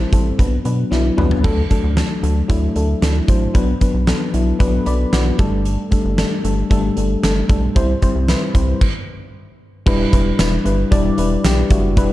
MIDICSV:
0, 0, Header, 1, 4, 480
1, 0, Start_track
1, 0, Key_signature, 1, "minor"
1, 0, Tempo, 526316
1, 1317, Time_signature, 4, 2, 24, 8
1, 11062, End_track
2, 0, Start_track
2, 0, Title_t, "FM electric piano"
2, 0, Program_c, 0, 5
2, 0, Control_c, 0, 64, 127
2, 0, Note_on_c, 0, 55, 76
2, 0, Note_on_c, 0, 60, 65
2, 0, Note_on_c, 0, 64, 71
2, 0, Note_on_c, 0, 69, 89
2, 0, Note_on_c, 0, 72, 82
2, 109, Note_off_c, 0, 55, 0
2, 109, Note_on_c, 0, 55, 75
2, 114, Note_off_c, 0, 60, 0
2, 114, Note_on_c, 0, 60, 70
2, 117, Note_off_c, 0, 64, 0
2, 117, Note_on_c, 0, 64, 68
2, 120, Note_off_c, 0, 69, 0
2, 120, Note_on_c, 0, 69, 86
2, 271, Note_off_c, 0, 55, 0
2, 274, Note_off_c, 0, 60, 0
2, 275, Note_off_c, 0, 64, 0
2, 277, Note_off_c, 0, 69, 0
2, 348, Note_on_c, 0, 54, 78
2, 352, Note_on_c, 0, 59, 69
2, 356, Note_on_c, 0, 62, 67
2, 359, Note_on_c, 0, 71, 82
2, 369, Control_c, 0, 64, 0
2, 375, Note_off_c, 0, 72, 0
2, 511, Note_off_c, 0, 54, 0
2, 513, Note_off_c, 0, 59, 0
2, 515, Note_off_c, 0, 62, 0
2, 517, Note_off_c, 0, 71, 0
2, 519, Control_c, 0, 64, 127
2, 588, Note_on_c, 0, 54, 79
2, 591, Note_on_c, 0, 59, 69
2, 594, Note_on_c, 0, 62, 69
2, 598, Note_on_c, 0, 71, 84
2, 751, Note_off_c, 0, 54, 0
2, 752, Note_off_c, 0, 59, 0
2, 754, Note_off_c, 0, 62, 0
2, 756, Note_off_c, 0, 71, 0
2, 827, Note_on_c, 0, 54, 97
2, 831, Note_on_c, 0, 59, 90
2, 833, Note_on_c, 0, 62, 88
2, 838, Note_on_c, 0, 64, 108
2, 990, Note_off_c, 0, 54, 0
2, 993, Note_off_c, 0, 59, 0
2, 994, Note_off_c, 0, 62, 0
2, 996, Note_off_c, 0, 64, 0
2, 1066, Note_on_c, 0, 54, 100
2, 1070, Note_on_c, 0, 59, 96
2, 1073, Note_on_c, 0, 62, 92
2, 1076, Note_on_c, 0, 71, 111
2, 1230, Note_off_c, 0, 54, 0
2, 1232, Note_off_c, 0, 59, 0
2, 1233, Note_off_c, 0, 62, 0
2, 1235, Note_off_c, 0, 71, 0
2, 1306, Note_on_c, 0, 54, 93
2, 1309, Note_on_c, 0, 57, 93
2, 1314, Note_on_c, 0, 62, 87
2, 1316, Note_on_c, 0, 69, 113
2, 1327, Control_c, 0, 64, 0
2, 1470, Note_off_c, 0, 54, 0
2, 1472, Note_off_c, 0, 57, 0
2, 1474, Note_off_c, 0, 62, 0
2, 1475, Note_off_c, 0, 69, 0
2, 1511, Control_c, 0, 64, 127
2, 1549, Note_on_c, 0, 54, 78
2, 1552, Note_on_c, 0, 57, 72
2, 1556, Note_on_c, 0, 62, 75
2, 1559, Note_on_c, 0, 69, 84
2, 1712, Note_off_c, 0, 54, 0
2, 1713, Note_off_c, 0, 57, 0
2, 1715, Note_off_c, 0, 62, 0
2, 1717, Note_off_c, 0, 69, 0
2, 1786, Note_on_c, 0, 54, 75
2, 1790, Note_on_c, 0, 57, 66
2, 1794, Note_on_c, 0, 62, 66
2, 1796, Note_on_c, 0, 69, 82
2, 1950, Note_off_c, 0, 54, 0
2, 1952, Note_off_c, 0, 57, 0
2, 1954, Note_off_c, 0, 62, 0
2, 1955, Note_off_c, 0, 69, 0
2, 2026, Note_on_c, 0, 54, 76
2, 2030, Note_on_c, 0, 57, 70
2, 2035, Note_on_c, 0, 62, 69
2, 2037, Note_on_c, 0, 69, 81
2, 2190, Note_off_c, 0, 54, 0
2, 2192, Note_off_c, 0, 57, 0
2, 2194, Note_off_c, 0, 62, 0
2, 2195, Note_off_c, 0, 69, 0
2, 2265, Note_on_c, 0, 54, 96
2, 2270, Note_on_c, 0, 57, 94
2, 2274, Note_on_c, 0, 62, 87
2, 2277, Note_on_c, 0, 64, 108
2, 2430, Note_off_c, 0, 54, 0
2, 2432, Note_off_c, 0, 57, 0
2, 2434, Note_off_c, 0, 62, 0
2, 2435, Note_off_c, 0, 64, 0
2, 2508, Note_on_c, 0, 54, 76
2, 2513, Note_on_c, 0, 57, 71
2, 2516, Note_on_c, 0, 62, 73
2, 2519, Note_on_c, 0, 69, 83
2, 2671, Note_off_c, 0, 54, 0
2, 2673, Note_off_c, 0, 57, 0
2, 2675, Note_off_c, 0, 62, 0
2, 2677, Note_off_c, 0, 69, 0
2, 2751, Note_on_c, 0, 54, 73
2, 2755, Note_on_c, 0, 57, 71
2, 2759, Note_on_c, 0, 62, 68
2, 2761, Note_on_c, 0, 69, 81
2, 2913, Note_off_c, 0, 54, 0
2, 2914, Note_off_c, 0, 57, 0
2, 2916, Note_off_c, 0, 62, 0
2, 2918, Note_off_c, 0, 69, 0
2, 2988, Note_on_c, 0, 54, 83
2, 2993, Note_on_c, 0, 57, 75
2, 2996, Note_on_c, 0, 62, 74
2, 3000, Note_on_c, 0, 72, 86
2, 3151, Note_off_c, 0, 54, 0
2, 3153, Note_off_c, 0, 57, 0
2, 3155, Note_off_c, 0, 62, 0
2, 3157, Note_off_c, 0, 72, 0
2, 3228, Note_on_c, 0, 54, 98
2, 3230, Note_on_c, 0, 59, 87
2, 3234, Note_on_c, 0, 62, 92
2, 3239, Note_on_c, 0, 71, 104
2, 3250, Control_c, 0, 64, 0
2, 3391, Note_off_c, 0, 54, 0
2, 3392, Note_off_c, 0, 59, 0
2, 3394, Note_off_c, 0, 62, 0
2, 3397, Note_off_c, 0, 71, 0
2, 3409, Control_c, 0, 64, 127
2, 3470, Note_on_c, 0, 54, 81
2, 3474, Note_on_c, 0, 59, 73
2, 3478, Note_on_c, 0, 62, 73
2, 3483, Note_on_c, 0, 71, 86
2, 3632, Note_off_c, 0, 54, 0
2, 3634, Note_off_c, 0, 59, 0
2, 3636, Note_off_c, 0, 62, 0
2, 3638, Note_off_c, 0, 71, 0
2, 3711, Note_on_c, 0, 54, 73
2, 3716, Note_on_c, 0, 59, 70
2, 3718, Note_on_c, 0, 62, 70
2, 3722, Note_on_c, 0, 69, 87
2, 3872, Note_off_c, 0, 54, 0
2, 3875, Note_off_c, 0, 59, 0
2, 3876, Note_off_c, 0, 62, 0
2, 3878, Note_off_c, 0, 69, 0
2, 3947, Note_on_c, 0, 54, 75
2, 3952, Note_on_c, 0, 59, 67
2, 3954, Note_on_c, 0, 62, 71
2, 3959, Note_on_c, 0, 64, 84
2, 4111, Note_off_c, 0, 54, 0
2, 4113, Note_off_c, 0, 59, 0
2, 4114, Note_off_c, 0, 62, 0
2, 4116, Note_off_c, 0, 64, 0
2, 4188, Note_on_c, 0, 54, 100
2, 4192, Note_on_c, 0, 59, 93
2, 4194, Note_on_c, 0, 62, 93
2, 4197, Note_on_c, 0, 71, 109
2, 4351, Note_off_c, 0, 54, 0
2, 4353, Note_off_c, 0, 59, 0
2, 4354, Note_off_c, 0, 62, 0
2, 4356, Note_off_c, 0, 71, 0
2, 4429, Note_on_c, 0, 54, 80
2, 4433, Note_on_c, 0, 59, 69
2, 4435, Note_on_c, 0, 83, 66
2, 4437, Note_on_c, 0, 62, 72
2, 4441, Note_on_c, 0, 74, 90
2, 4592, Note_off_c, 0, 54, 0
2, 4593, Note_off_c, 0, 59, 0
2, 4595, Note_off_c, 0, 62, 0
2, 4597, Note_off_c, 0, 74, 0
2, 4659, Note_off_c, 0, 83, 0
2, 4670, Note_on_c, 0, 54, 81
2, 4673, Note_on_c, 0, 59, 74
2, 4676, Note_on_c, 0, 74, 72
2, 4677, Note_on_c, 0, 62, 74
2, 4681, Note_on_c, 0, 66, 87
2, 4832, Note_off_c, 0, 54, 0
2, 4834, Note_off_c, 0, 59, 0
2, 4836, Note_off_c, 0, 62, 0
2, 4837, Note_off_c, 0, 66, 0
2, 4909, Note_on_c, 0, 55, 90
2, 4912, Note_on_c, 0, 57, 81
2, 4916, Note_on_c, 0, 62, 80
2, 4919, Note_on_c, 0, 69, 97
2, 4930, Control_c, 0, 64, 0
2, 5100, Control_c, 0, 64, 127
2, 5123, Note_off_c, 0, 74, 0
2, 5297, Note_off_c, 0, 55, 0
2, 5299, Note_off_c, 0, 57, 0
2, 5300, Note_off_c, 0, 62, 0
2, 5302, Note_off_c, 0, 69, 0
2, 5388, Note_on_c, 0, 55, 85
2, 5393, Note_on_c, 0, 57, 73
2, 5396, Note_on_c, 0, 62, 73
2, 5399, Note_on_c, 0, 69, 90
2, 5551, Note_off_c, 0, 55, 0
2, 5554, Note_off_c, 0, 57, 0
2, 5555, Note_off_c, 0, 62, 0
2, 5557, Note_off_c, 0, 69, 0
2, 5630, Note_on_c, 0, 55, 81
2, 5634, Note_on_c, 0, 57, 71
2, 5636, Note_on_c, 0, 62, 71
2, 5641, Note_on_c, 0, 69, 83
2, 5792, Note_off_c, 0, 55, 0
2, 5794, Note_off_c, 0, 57, 0
2, 5795, Note_off_c, 0, 62, 0
2, 5798, Note_off_c, 0, 69, 0
2, 5870, Note_on_c, 0, 55, 82
2, 5873, Note_on_c, 0, 57, 75
2, 5877, Note_on_c, 0, 62, 70
2, 5880, Note_on_c, 0, 69, 88
2, 6032, Note_off_c, 0, 55, 0
2, 6034, Note_off_c, 0, 57, 0
2, 6035, Note_off_c, 0, 62, 0
2, 6037, Note_off_c, 0, 69, 0
2, 6110, Note_on_c, 0, 55, 108
2, 6113, Note_on_c, 0, 57, 97
2, 6118, Note_on_c, 0, 62, 94
2, 6121, Note_on_c, 0, 69, 105
2, 6272, Note_off_c, 0, 55, 0
2, 6274, Note_off_c, 0, 57, 0
2, 6276, Note_off_c, 0, 62, 0
2, 6278, Note_off_c, 0, 69, 0
2, 6350, Note_on_c, 0, 55, 80
2, 6354, Note_on_c, 0, 57, 72
2, 6358, Note_on_c, 0, 62, 74
2, 6361, Note_on_c, 0, 69, 87
2, 6512, Note_off_c, 0, 55, 0
2, 6514, Note_off_c, 0, 57, 0
2, 6516, Note_off_c, 0, 62, 0
2, 6518, Note_off_c, 0, 69, 0
2, 6592, Note_on_c, 0, 55, 79
2, 6595, Note_on_c, 0, 57, 72
2, 6599, Note_on_c, 0, 62, 73
2, 6602, Note_on_c, 0, 69, 92
2, 6753, Note_off_c, 0, 55, 0
2, 6755, Note_off_c, 0, 57, 0
2, 6757, Note_off_c, 0, 62, 0
2, 6758, Note_off_c, 0, 69, 0
2, 6833, Note_on_c, 0, 55, 88
2, 6836, Note_on_c, 0, 57, 75
2, 6839, Note_on_c, 0, 62, 76
2, 6843, Note_on_c, 0, 69, 94
2, 6993, Note_off_c, 0, 55, 0
2, 6995, Note_off_c, 0, 57, 0
2, 6996, Note_off_c, 0, 62, 0
2, 6999, Note_off_c, 0, 69, 0
2, 7071, Note_on_c, 0, 55, 99
2, 7075, Note_on_c, 0, 60, 91
2, 7079, Note_on_c, 0, 64, 92
2, 7082, Note_on_c, 0, 72, 114
2, 7090, Control_c, 0, 64, 0
2, 7233, Note_off_c, 0, 55, 0
2, 7234, Note_off_c, 0, 60, 0
2, 7236, Note_off_c, 0, 64, 0
2, 7238, Note_off_c, 0, 72, 0
2, 7257, Control_c, 0, 64, 127
2, 7310, Note_on_c, 0, 55, 84
2, 7314, Note_on_c, 0, 60, 76
2, 7318, Note_on_c, 0, 64, 75
2, 7322, Note_on_c, 0, 72, 95
2, 7472, Note_off_c, 0, 55, 0
2, 7474, Note_off_c, 0, 60, 0
2, 7476, Note_off_c, 0, 64, 0
2, 7478, Note_off_c, 0, 72, 0
2, 7550, Note_on_c, 0, 55, 77
2, 7555, Note_on_c, 0, 60, 70
2, 7557, Note_on_c, 0, 64, 75
2, 7562, Note_on_c, 0, 71, 91
2, 7712, Note_off_c, 0, 55, 0
2, 7714, Note_off_c, 0, 60, 0
2, 7716, Note_off_c, 0, 64, 0
2, 7718, Note_off_c, 0, 71, 0
2, 7791, Note_on_c, 0, 55, 83
2, 7794, Note_on_c, 0, 60, 77
2, 7797, Note_on_c, 0, 64, 73
2, 7801, Note_on_c, 0, 72, 87
2, 7953, Note_off_c, 0, 55, 0
2, 7954, Note_off_c, 0, 60, 0
2, 7956, Note_off_c, 0, 64, 0
2, 7957, Note_off_c, 0, 72, 0
2, 8051, Control_c, 0, 64, 0
2, 8991, Note_on_c, 0, 55, 107
2, 8994, Note_on_c, 0, 62, 95
2, 8998, Note_on_c, 0, 64, 93
2, 9002, Note_on_c, 0, 71, 114
2, 9142, Control_c, 0, 64, 127
2, 9153, Note_off_c, 0, 55, 0
2, 9154, Note_off_c, 0, 62, 0
2, 9156, Note_off_c, 0, 64, 0
2, 9158, Note_off_c, 0, 71, 0
2, 9230, Note_on_c, 0, 55, 89
2, 9234, Note_on_c, 0, 62, 76
2, 9238, Note_on_c, 0, 64, 75
2, 9241, Note_on_c, 0, 71, 96
2, 9392, Note_off_c, 0, 55, 0
2, 9394, Note_off_c, 0, 62, 0
2, 9396, Note_off_c, 0, 64, 0
2, 9397, Note_off_c, 0, 71, 0
2, 9472, Note_on_c, 0, 55, 77
2, 9475, Note_on_c, 0, 62, 78
2, 9479, Note_on_c, 0, 64, 73
2, 9482, Note_on_c, 0, 71, 84
2, 9633, Note_off_c, 0, 55, 0
2, 9634, Note_off_c, 0, 62, 0
2, 9636, Note_off_c, 0, 64, 0
2, 9638, Note_off_c, 0, 71, 0
2, 9710, Note_on_c, 0, 55, 85
2, 9713, Note_on_c, 0, 62, 73
2, 9716, Note_on_c, 0, 64, 71
2, 9721, Note_on_c, 0, 71, 96
2, 9872, Note_off_c, 0, 55, 0
2, 9873, Note_off_c, 0, 62, 0
2, 9875, Note_off_c, 0, 64, 0
2, 9877, Note_off_c, 0, 71, 0
2, 9949, Note_on_c, 0, 55, 108
2, 9953, Note_on_c, 0, 62, 101
2, 9957, Note_on_c, 0, 64, 91
2, 9960, Note_on_c, 0, 74, 114
2, 10112, Note_off_c, 0, 55, 0
2, 10113, Note_off_c, 0, 62, 0
2, 10115, Note_off_c, 0, 64, 0
2, 10117, Note_off_c, 0, 74, 0
2, 10191, Note_on_c, 0, 55, 88
2, 10194, Note_on_c, 0, 62, 80
2, 10198, Note_on_c, 0, 64, 75
2, 10202, Note_on_c, 0, 71, 92
2, 10353, Note_off_c, 0, 55, 0
2, 10354, Note_off_c, 0, 62, 0
2, 10356, Note_off_c, 0, 64, 0
2, 10358, Note_off_c, 0, 71, 0
2, 10433, Note_on_c, 0, 55, 82
2, 10435, Note_on_c, 0, 62, 78
2, 10440, Note_on_c, 0, 64, 76
2, 10443, Note_on_c, 0, 67, 88
2, 10593, Note_off_c, 0, 55, 0
2, 10595, Note_off_c, 0, 62, 0
2, 10597, Note_off_c, 0, 64, 0
2, 10598, Note_off_c, 0, 67, 0
2, 10673, Note_on_c, 0, 55, 90
2, 10676, Note_on_c, 0, 62, 81
2, 10680, Note_on_c, 0, 64, 85
2, 10684, Note_on_c, 0, 66, 99
2, 10833, Note_off_c, 0, 55, 0
2, 10835, Note_off_c, 0, 62, 0
2, 10837, Note_off_c, 0, 64, 0
2, 10839, Note_off_c, 0, 66, 0
2, 10912, Note_on_c, 0, 55, 107
2, 10916, Note_on_c, 0, 62, 102
2, 10920, Note_on_c, 0, 64, 96
2, 10923, Note_on_c, 0, 71, 119
2, 11062, Note_off_c, 0, 55, 0
2, 11062, Note_off_c, 0, 62, 0
2, 11062, Note_off_c, 0, 64, 0
2, 11062, Note_off_c, 0, 71, 0
2, 11062, End_track
3, 0, Start_track
3, 0, Title_t, "Analog synth bass"
3, 0, Program_c, 1, 38
3, 114, Note_on_c, 1, 33, 102
3, 288, Note_off_c, 1, 33, 0
3, 357, Note_on_c, 1, 35, 102
3, 530, Note_off_c, 1, 35, 0
3, 595, Note_on_c, 1, 47, 88
3, 768, Note_off_c, 1, 47, 0
3, 835, Note_on_c, 1, 35, 83
3, 1008, Note_off_c, 1, 35, 0
3, 1074, Note_on_c, 1, 36, 84
3, 1248, Note_off_c, 1, 36, 0
3, 1316, Note_on_c, 1, 38, 100
3, 1489, Note_off_c, 1, 38, 0
3, 1676, Note_on_c, 1, 38, 95
3, 1849, Note_off_c, 1, 38, 0
3, 2034, Note_on_c, 1, 38, 105
3, 2208, Note_off_c, 1, 38, 0
3, 2276, Note_on_c, 1, 38, 101
3, 2449, Note_off_c, 1, 38, 0
3, 2515, Note_on_c, 1, 38, 91
3, 2688, Note_off_c, 1, 38, 0
3, 2753, Note_on_c, 1, 38, 91
3, 2927, Note_off_c, 1, 38, 0
3, 2995, Note_on_c, 1, 33, 84
3, 3168, Note_off_c, 1, 33, 0
3, 3236, Note_on_c, 1, 35, 94
3, 3409, Note_off_c, 1, 35, 0
3, 3593, Note_on_c, 1, 35, 87
3, 3767, Note_off_c, 1, 35, 0
3, 3956, Note_on_c, 1, 35, 100
3, 4130, Note_off_c, 1, 35, 0
3, 4196, Note_on_c, 1, 35, 106
3, 4369, Note_off_c, 1, 35, 0
3, 4436, Note_on_c, 1, 35, 97
3, 4609, Note_off_c, 1, 35, 0
3, 4677, Note_on_c, 1, 35, 93
3, 4850, Note_off_c, 1, 35, 0
3, 4917, Note_on_c, 1, 31, 94
3, 5263, Note_off_c, 1, 31, 0
3, 5516, Note_on_c, 1, 31, 95
3, 5689, Note_off_c, 1, 31, 0
3, 5876, Note_on_c, 1, 31, 100
3, 6049, Note_off_c, 1, 31, 0
3, 6117, Note_on_c, 1, 31, 112
3, 6290, Note_off_c, 1, 31, 0
3, 6359, Note_on_c, 1, 31, 99
3, 6531, Note_off_c, 1, 31, 0
3, 6598, Note_on_c, 1, 31, 96
3, 6771, Note_off_c, 1, 31, 0
3, 6836, Note_on_c, 1, 35, 88
3, 7009, Note_off_c, 1, 35, 0
3, 7077, Note_on_c, 1, 36, 106
3, 7250, Note_off_c, 1, 36, 0
3, 7437, Note_on_c, 1, 36, 95
3, 7610, Note_off_c, 1, 36, 0
3, 7796, Note_on_c, 1, 36, 104
3, 7969, Note_off_c, 1, 36, 0
3, 8997, Note_on_c, 1, 28, 104
3, 9170, Note_off_c, 1, 28, 0
3, 9239, Note_on_c, 1, 28, 106
3, 9411, Note_off_c, 1, 28, 0
3, 9478, Note_on_c, 1, 28, 115
3, 9650, Note_off_c, 1, 28, 0
3, 9717, Note_on_c, 1, 31, 96
3, 9890, Note_off_c, 1, 31, 0
3, 9957, Note_on_c, 1, 28, 109
3, 10130, Note_off_c, 1, 28, 0
3, 10198, Note_on_c, 1, 28, 98
3, 10370, Note_off_c, 1, 28, 0
3, 10437, Note_on_c, 1, 35, 92
3, 10610, Note_off_c, 1, 35, 0
3, 10676, Note_on_c, 1, 30, 89
3, 10916, Note_on_c, 1, 28, 111
3, 10930, Note_off_c, 1, 30, 0
3, 11062, Note_off_c, 1, 28, 0
3, 11062, End_track
4, 0, Start_track
4, 0, Title_t, "Drums"
4, 115, Note_on_c, 9, 36, 85
4, 118, Note_on_c, 9, 42, 67
4, 206, Note_off_c, 9, 36, 0
4, 209, Note_off_c, 9, 42, 0
4, 357, Note_on_c, 9, 36, 96
4, 358, Note_on_c, 9, 42, 78
4, 448, Note_off_c, 9, 36, 0
4, 450, Note_off_c, 9, 42, 0
4, 594, Note_on_c, 9, 42, 67
4, 685, Note_off_c, 9, 42, 0
4, 837, Note_on_c, 9, 38, 51
4, 928, Note_off_c, 9, 38, 0
4, 1077, Note_on_c, 9, 45, 77
4, 1168, Note_off_c, 9, 45, 0
4, 1197, Note_on_c, 9, 43, 78
4, 1288, Note_off_c, 9, 43, 0
4, 1317, Note_on_c, 9, 36, 98
4, 1318, Note_on_c, 9, 49, 84
4, 1408, Note_off_c, 9, 36, 0
4, 1409, Note_off_c, 9, 49, 0
4, 1556, Note_on_c, 9, 42, 61
4, 1558, Note_on_c, 9, 36, 78
4, 1647, Note_off_c, 9, 42, 0
4, 1650, Note_off_c, 9, 36, 0
4, 1796, Note_on_c, 9, 38, 107
4, 1798, Note_on_c, 9, 42, 67
4, 1887, Note_off_c, 9, 38, 0
4, 1889, Note_off_c, 9, 42, 0
4, 2039, Note_on_c, 9, 42, 66
4, 2130, Note_off_c, 9, 42, 0
4, 2277, Note_on_c, 9, 36, 90
4, 2279, Note_on_c, 9, 42, 78
4, 2368, Note_off_c, 9, 36, 0
4, 2370, Note_off_c, 9, 42, 0
4, 2515, Note_on_c, 9, 42, 73
4, 2606, Note_off_c, 9, 42, 0
4, 2757, Note_on_c, 9, 42, 79
4, 2758, Note_on_c, 9, 38, 96
4, 2848, Note_off_c, 9, 42, 0
4, 2849, Note_off_c, 9, 38, 0
4, 2995, Note_on_c, 9, 36, 88
4, 2995, Note_on_c, 9, 42, 69
4, 3086, Note_off_c, 9, 36, 0
4, 3086, Note_off_c, 9, 42, 0
4, 3237, Note_on_c, 9, 36, 97
4, 3238, Note_on_c, 9, 42, 78
4, 3328, Note_off_c, 9, 36, 0
4, 3329, Note_off_c, 9, 42, 0
4, 3476, Note_on_c, 9, 42, 65
4, 3478, Note_on_c, 9, 36, 80
4, 3567, Note_off_c, 9, 42, 0
4, 3570, Note_off_c, 9, 36, 0
4, 3715, Note_on_c, 9, 38, 112
4, 3717, Note_on_c, 9, 42, 69
4, 3806, Note_off_c, 9, 38, 0
4, 3809, Note_off_c, 9, 42, 0
4, 3957, Note_on_c, 9, 42, 68
4, 4048, Note_off_c, 9, 42, 0
4, 4197, Note_on_c, 9, 36, 99
4, 4198, Note_on_c, 9, 42, 78
4, 4288, Note_off_c, 9, 36, 0
4, 4289, Note_off_c, 9, 42, 0
4, 4435, Note_on_c, 9, 42, 73
4, 4526, Note_off_c, 9, 42, 0
4, 4676, Note_on_c, 9, 42, 80
4, 4677, Note_on_c, 9, 38, 100
4, 4767, Note_off_c, 9, 42, 0
4, 4768, Note_off_c, 9, 38, 0
4, 4914, Note_on_c, 9, 42, 73
4, 4917, Note_on_c, 9, 36, 98
4, 5005, Note_off_c, 9, 42, 0
4, 5008, Note_off_c, 9, 36, 0
4, 5156, Note_on_c, 9, 42, 78
4, 5247, Note_off_c, 9, 42, 0
4, 5395, Note_on_c, 9, 42, 62
4, 5399, Note_on_c, 9, 36, 82
4, 5486, Note_off_c, 9, 42, 0
4, 5490, Note_off_c, 9, 36, 0
4, 5637, Note_on_c, 9, 38, 111
4, 5639, Note_on_c, 9, 42, 73
4, 5728, Note_off_c, 9, 38, 0
4, 5730, Note_off_c, 9, 42, 0
4, 5878, Note_on_c, 9, 42, 67
4, 5969, Note_off_c, 9, 42, 0
4, 6117, Note_on_c, 9, 36, 96
4, 6120, Note_on_c, 9, 42, 80
4, 6209, Note_off_c, 9, 36, 0
4, 6211, Note_off_c, 9, 42, 0
4, 6355, Note_on_c, 9, 42, 72
4, 6446, Note_off_c, 9, 42, 0
4, 6598, Note_on_c, 9, 38, 99
4, 6598, Note_on_c, 9, 42, 84
4, 6689, Note_off_c, 9, 38, 0
4, 6689, Note_off_c, 9, 42, 0
4, 6834, Note_on_c, 9, 42, 73
4, 6835, Note_on_c, 9, 36, 95
4, 6926, Note_off_c, 9, 42, 0
4, 6927, Note_off_c, 9, 36, 0
4, 7077, Note_on_c, 9, 36, 108
4, 7077, Note_on_c, 9, 42, 79
4, 7168, Note_off_c, 9, 36, 0
4, 7168, Note_off_c, 9, 42, 0
4, 7315, Note_on_c, 9, 42, 66
4, 7319, Note_on_c, 9, 36, 79
4, 7407, Note_off_c, 9, 42, 0
4, 7410, Note_off_c, 9, 36, 0
4, 7555, Note_on_c, 9, 38, 106
4, 7558, Note_on_c, 9, 42, 67
4, 7647, Note_off_c, 9, 38, 0
4, 7649, Note_off_c, 9, 42, 0
4, 7796, Note_on_c, 9, 36, 88
4, 7799, Note_on_c, 9, 42, 67
4, 7887, Note_off_c, 9, 36, 0
4, 7890, Note_off_c, 9, 42, 0
4, 8037, Note_on_c, 9, 49, 90
4, 8038, Note_on_c, 9, 36, 102
4, 8128, Note_off_c, 9, 49, 0
4, 8129, Note_off_c, 9, 36, 0
4, 8998, Note_on_c, 9, 36, 112
4, 8998, Note_on_c, 9, 49, 89
4, 9089, Note_off_c, 9, 36, 0
4, 9089, Note_off_c, 9, 49, 0
4, 9236, Note_on_c, 9, 42, 64
4, 9239, Note_on_c, 9, 36, 87
4, 9328, Note_off_c, 9, 42, 0
4, 9331, Note_off_c, 9, 36, 0
4, 9475, Note_on_c, 9, 38, 116
4, 9476, Note_on_c, 9, 54, 70
4, 9478, Note_on_c, 9, 42, 76
4, 9567, Note_off_c, 9, 38, 0
4, 9568, Note_off_c, 9, 54, 0
4, 9569, Note_off_c, 9, 42, 0
4, 9719, Note_on_c, 9, 42, 72
4, 9810, Note_off_c, 9, 42, 0
4, 9958, Note_on_c, 9, 36, 101
4, 9959, Note_on_c, 9, 42, 90
4, 10049, Note_off_c, 9, 36, 0
4, 10051, Note_off_c, 9, 42, 0
4, 10195, Note_on_c, 9, 42, 74
4, 10286, Note_off_c, 9, 42, 0
4, 10437, Note_on_c, 9, 42, 91
4, 10438, Note_on_c, 9, 38, 102
4, 10438, Note_on_c, 9, 54, 64
4, 10528, Note_off_c, 9, 42, 0
4, 10529, Note_off_c, 9, 38, 0
4, 10529, Note_off_c, 9, 54, 0
4, 10674, Note_on_c, 9, 42, 73
4, 10675, Note_on_c, 9, 36, 99
4, 10765, Note_off_c, 9, 42, 0
4, 10767, Note_off_c, 9, 36, 0
4, 10916, Note_on_c, 9, 42, 87
4, 10917, Note_on_c, 9, 36, 112
4, 11007, Note_off_c, 9, 42, 0
4, 11008, Note_off_c, 9, 36, 0
4, 11062, End_track
0, 0, End_of_file